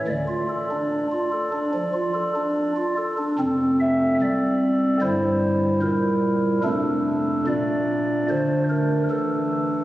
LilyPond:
<<
  \new Staff \with { instrumentName = "Pipe organ" } { \time 4/4 \key d \minor \tempo 4 = 73 << { d''2.~ d''8 r8 | r8 e''8 d''4 c''4 bes'4 | a'4 d''4 c''8 bes'8 a'4 | } \\ { r1 | <c' a'>2 <g e'>2 | <a d'>1 | } >> }
  \new Staff \with { instrumentName = "Pipe organ" } { \clef bass \time 4/4 \key d \minor <d, d>16 f'16 a'16 d'8 f'16 a'16 d'16 f16 f'16 a'16 d'8 f'16 a'16 d'16 | <f,, f,>4 c,4 <g,, g,>4 bes,4 | <f,, f,>4 bes,4 d4 e4 | }
>>